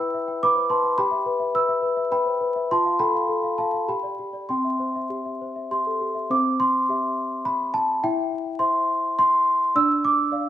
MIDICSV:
0, 0, Header, 1, 2, 480
1, 0, Start_track
1, 0, Key_signature, 0, "major"
1, 0, Tempo, 574163
1, 825, Time_signature, 3, 2, 24, 8
1, 2748, Tempo, 599401
1, 5628, Tempo, 574163
1, 8645, End_track
2, 0, Start_track
2, 0, Title_t, "Celesta"
2, 0, Program_c, 0, 8
2, 0, Control_c, 0, 64, 127
2, 0, Note_on_c, 0, 64, 68
2, 0, Note_on_c, 0, 71, 53
2, 0, Note_on_c, 0, 76, 55
2, 0, Note_on_c, 0, 79, 55
2, 0, Note_on_c, 0, 83, 78
2, 0, Note_on_c, 0, 88, 108
2, 0, Note_on_c, 0, 91, 105
2, 3, Note_off_c, 0, 79, 0
2, 3, Note_on_c, 0, 79, 56
2, 118, Note_off_c, 0, 76, 0
2, 118, Note_on_c, 0, 76, 45
2, 187, Note_off_c, 0, 79, 0
2, 232, Note_on_c, 0, 79, 52
2, 305, Note_off_c, 0, 76, 0
2, 326, Note_off_c, 0, 83, 0
2, 353, Note_off_c, 0, 88, 0
2, 359, Note_off_c, 0, 71, 0
2, 359, Note_on_c, 0, 71, 53
2, 359, Note_on_c, 0, 86, 107
2, 373, Note_on_c, 0, 83, 81
2, 422, Note_off_c, 0, 79, 0
2, 545, Note_off_c, 0, 71, 0
2, 583, Note_off_c, 0, 83, 0
2, 583, Note_on_c, 0, 84, 87
2, 584, Note_on_c, 0, 71, 51
2, 590, Note_on_c, 0, 81, 71
2, 592, Note_off_c, 0, 86, 0
2, 700, Note_on_c, 0, 79, 44
2, 776, Note_off_c, 0, 71, 0
2, 797, Note_off_c, 0, 64, 0
2, 810, Note_off_c, 0, 81, 0
2, 818, Note_on_c, 0, 83, 107
2, 822, Note_off_c, 0, 79, 0
2, 823, Note_off_c, 0, 84, 0
2, 824, Note_on_c, 0, 67, 70
2, 834, Note_on_c, 0, 79, 75
2, 838, Control_c, 0, 64, 0
2, 842, Note_off_c, 0, 91, 0
2, 930, Note_on_c, 0, 76, 47
2, 982, Control_c, 0, 64, 127
2, 1052, Note_on_c, 0, 71, 56
2, 1127, Note_off_c, 0, 76, 0
2, 1168, Note_on_c, 0, 76, 51
2, 1247, Note_off_c, 0, 71, 0
2, 1272, Note_off_c, 0, 79, 0
2, 1290, Note_off_c, 0, 83, 0
2, 1294, Note_on_c, 0, 71, 51
2, 1295, Note_on_c, 0, 88, 101
2, 1300, Note_on_c, 0, 83, 69
2, 1364, Note_off_c, 0, 76, 0
2, 1408, Note_on_c, 0, 76, 49
2, 1487, Note_off_c, 0, 71, 0
2, 1523, Note_on_c, 0, 71, 46
2, 1604, Note_off_c, 0, 76, 0
2, 1645, Note_on_c, 0, 76, 50
2, 1722, Note_off_c, 0, 71, 0
2, 1744, Note_off_c, 0, 83, 0
2, 1764, Note_on_c, 0, 71, 51
2, 1770, Note_on_c, 0, 83, 95
2, 1773, Note_on_c, 0, 79, 76
2, 1774, Note_off_c, 0, 88, 0
2, 1844, Note_off_c, 0, 76, 0
2, 1887, Note_on_c, 0, 72, 44
2, 1965, Note_off_c, 0, 71, 0
2, 2013, Note_on_c, 0, 71, 46
2, 2014, Note_off_c, 0, 72, 0
2, 2137, Note_on_c, 0, 76, 49
2, 2211, Note_off_c, 0, 71, 0
2, 2228, Note_off_c, 0, 79, 0
2, 2229, Note_off_c, 0, 67, 0
2, 2260, Note_off_c, 0, 83, 0
2, 2261, Note_off_c, 0, 76, 0
2, 2268, Note_on_c, 0, 84, 95
2, 2269, Note_on_c, 0, 65, 64
2, 2278, Note_on_c, 0, 81, 77
2, 2280, Control_c, 0, 64, 0
2, 2383, Note_on_c, 0, 77, 48
2, 2429, Control_c, 0, 64, 127
2, 2496, Note_off_c, 0, 81, 0
2, 2503, Note_on_c, 0, 69, 50
2, 2503, Note_on_c, 0, 83, 102
2, 2508, Note_off_c, 0, 84, 0
2, 2509, Note_on_c, 0, 79, 72
2, 2577, Note_off_c, 0, 77, 0
2, 2631, Note_on_c, 0, 77, 49
2, 2698, Note_off_c, 0, 69, 0
2, 2746, Note_on_c, 0, 69, 46
2, 2820, Note_off_c, 0, 77, 0
2, 2867, Note_on_c, 0, 77, 47
2, 2934, Note_off_c, 0, 69, 0
2, 2952, Note_off_c, 0, 79, 0
2, 2982, Note_off_c, 0, 83, 0
2, 2984, Note_on_c, 0, 81, 81
2, 2988, Note_on_c, 0, 69, 38
2, 2989, Note_off_c, 0, 77, 0
2, 2998, Note_on_c, 0, 77, 59
2, 3098, Note_off_c, 0, 77, 0
2, 3107, Note_on_c, 0, 77, 45
2, 3175, Note_off_c, 0, 69, 0
2, 3196, Note_off_c, 0, 65, 0
2, 3221, Note_off_c, 0, 81, 0
2, 3224, Note_off_c, 0, 77, 0
2, 3225, Note_on_c, 0, 67, 56
2, 3227, Note_on_c, 0, 83, 80
2, 3234, Note_on_c, 0, 79, 66
2, 3237, Control_c, 0, 64, 0
2, 3344, Note_on_c, 0, 74, 41
2, 3378, Control_c, 0, 64, 127
2, 3464, Note_off_c, 0, 67, 0
2, 3474, Note_on_c, 0, 67, 45
2, 3536, Note_off_c, 0, 74, 0
2, 3585, Note_on_c, 0, 74, 41
2, 3662, Note_off_c, 0, 67, 0
2, 3679, Note_off_c, 0, 79, 0
2, 3705, Note_off_c, 0, 74, 0
2, 3708, Note_off_c, 0, 83, 0
2, 3710, Note_on_c, 0, 84, 75
2, 3719, Control_c, 0, 64, 0
2, 3719, Note_on_c, 0, 60, 55
2, 3723, Note_on_c, 0, 79, 63
2, 3834, Note_on_c, 0, 76, 41
2, 3864, Control_c, 0, 64, 127
2, 3957, Note_on_c, 0, 72, 39
2, 4025, Note_off_c, 0, 76, 0
2, 4084, Note_on_c, 0, 76, 46
2, 4147, Note_off_c, 0, 72, 0
2, 4199, Note_on_c, 0, 67, 44
2, 4272, Note_off_c, 0, 76, 0
2, 4324, Note_on_c, 0, 76, 41
2, 4390, Note_off_c, 0, 67, 0
2, 4451, Note_on_c, 0, 72, 39
2, 4513, Note_off_c, 0, 76, 0
2, 4567, Note_on_c, 0, 76, 42
2, 4637, Note_off_c, 0, 72, 0
2, 4654, Note_off_c, 0, 79, 0
2, 4680, Note_off_c, 0, 84, 0
2, 4689, Note_on_c, 0, 67, 42
2, 4691, Note_on_c, 0, 84, 81
2, 4755, Note_off_c, 0, 76, 0
2, 4812, Note_on_c, 0, 69, 37
2, 4877, Note_off_c, 0, 67, 0
2, 4927, Note_off_c, 0, 69, 0
2, 4928, Note_on_c, 0, 67, 44
2, 5039, Note_on_c, 0, 76, 39
2, 5116, Note_off_c, 0, 67, 0
2, 5134, Note_off_c, 0, 60, 0
2, 5159, Note_off_c, 0, 76, 0
2, 5162, Note_on_c, 0, 60, 67
2, 5163, Note_on_c, 0, 72, 60
2, 5166, Note_off_c, 0, 84, 0
2, 5167, Note_on_c, 0, 86, 100
2, 5175, Control_c, 0, 64, 0
2, 5298, Control_c, 0, 64, 127
2, 5398, Note_off_c, 0, 86, 0
2, 5399, Note_on_c, 0, 84, 108
2, 5614, Note_off_c, 0, 60, 0
2, 5615, Note_off_c, 0, 72, 0
2, 5634, Note_on_c, 0, 67, 50
2, 5642, Note_on_c, 0, 76, 53
2, 6105, Note_on_c, 0, 83, 99
2, 6108, Note_off_c, 0, 84, 0
2, 6343, Note_on_c, 0, 81, 106
2, 6347, Note_off_c, 0, 83, 0
2, 6559, Note_off_c, 0, 67, 0
2, 6563, Note_off_c, 0, 76, 0
2, 6586, Note_off_c, 0, 81, 0
2, 6592, Note_on_c, 0, 64, 62
2, 6592, Note_on_c, 0, 76, 63
2, 6592, Note_on_c, 0, 79, 106
2, 6605, Control_c, 0, 64, 0
2, 6761, Control_c, 0, 64, 127
2, 7054, Note_off_c, 0, 64, 0
2, 7054, Note_off_c, 0, 76, 0
2, 7056, Note_on_c, 0, 84, 97
2, 7058, Note_on_c, 0, 72, 47
2, 7064, Note_on_c, 0, 76, 55
2, 7068, Note_off_c, 0, 79, 0
2, 7542, Note_off_c, 0, 84, 0
2, 7553, Note_on_c, 0, 84, 108
2, 7987, Note_off_c, 0, 72, 0
2, 7990, Note_off_c, 0, 76, 0
2, 8028, Note_off_c, 0, 84, 0
2, 8028, Note_on_c, 0, 74, 64
2, 8029, Note_on_c, 0, 62, 75
2, 8031, Note_on_c, 0, 88, 122
2, 8038, Control_c, 0, 64, 0
2, 8192, Control_c, 0, 64, 127
2, 8267, Note_off_c, 0, 88, 0
2, 8271, Note_on_c, 0, 86, 108
2, 8489, Note_off_c, 0, 74, 0
2, 8492, Note_off_c, 0, 62, 0
2, 8499, Note_on_c, 0, 74, 60
2, 8504, Note_on_c, 0, 77, 59
2, 8645, Note_off_c, 0, 74, 0
2, 8645, Note_off_c, 0, 77, 0
2, 8645, Note_off_c, 0, 86, 0
2, 8645, End_track
0, 0, End_of_file